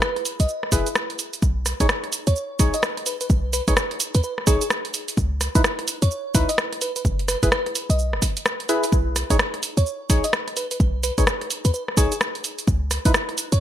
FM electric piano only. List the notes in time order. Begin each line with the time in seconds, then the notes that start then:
0.02 B4
0.40 D#5
2.27 C#5
2.74 D#5
3.06 B4
3.21 B4
3.53 B4
3.68 B4
4.15 B4
4.24 B4
4.47 G#4
4.62 G#4
6.02 C#5
6.49 D#5
6.82 B4
6.96 B4
7.28 B4
7.43 B4
7.52 B4
7.90 D#5
9.77 C#5
10.24 D#5
10.57 B4
10.71 B4
11.04 B4
11.18 B4
11.65 B4
11.74 B4
11.97 G#4
12.12 G#4
13.52 C#5